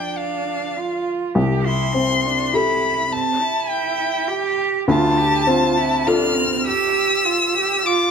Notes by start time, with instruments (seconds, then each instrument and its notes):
Already playing: felt piano F3 A4, cello D4, violin G5
0.17 violin F5
0.77 cello F4
1.35 felt piano C2, cello G4
1.65 cello E4, violin C6
1.94 felt piano C4, cello C4
2.25 cello D4
2.53 cello E4, felt piano G4 A4, violin B5
3.11 cello C4, violin A5
3.41 cello E4
3.70 violin G5
4.28 cello G4
4.88 felt piano D2, cello F4, violin A5
5.17 cello G4
5.47 felt piano C4, cello F4
5.77 cello E4
6.07 cello D4, felt piano F4 A4, violin F6
6.36 cello C4
6.66 cello G4, violin E6
7.25 cello F4
7.54 cello G4
7.85 cello F4, violin D6